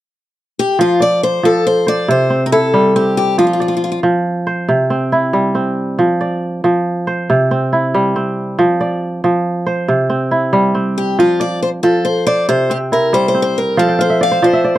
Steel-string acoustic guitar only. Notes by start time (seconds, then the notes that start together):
0.59 G4
0.81 F4
1.02 D5
1.23 C5
1.45 A4
1.67 C5
1.88 D5
2.11 C5
2.46 A#4
2.52 A4
2.96 G4
3.17 G4
3.39 F4
3.47 F4
3.53 F4
3.62 F4
3.68 F4
3.77 F4
3.84 F4
3.92 F4
10.98 G4
11.20 F4
11.41 D5
11.63 C5
11.83 A4
12.05 C5
12.27 D5
12.49 C5
12.71 G4
12.93 A#4
13.14 C5
13.28 C5
13.42 C5
13.58 A#4
13.79 A4
14.01 C5
14.23 F5
14.44 C5